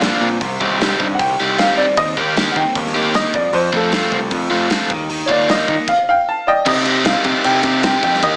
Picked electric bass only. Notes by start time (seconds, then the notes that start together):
Already playing: A#1
0.21 A#2
0.41 C2
0.60 C2
1.00 G2
1.19 C2
1.40 C2
1.97 D#2
2.17 D#2
2.56 D#3
2.76 D#2
3.34 F2
3.53 F2
3.73 F2
4.12 C2
4.31 F2
4.51 F2
4.90 D#2
5.29 D#2
5.68 D#3
6.66 C3
7.25 C3
7.45 C3
7.63 C3
8.03 F2
8.23 D#2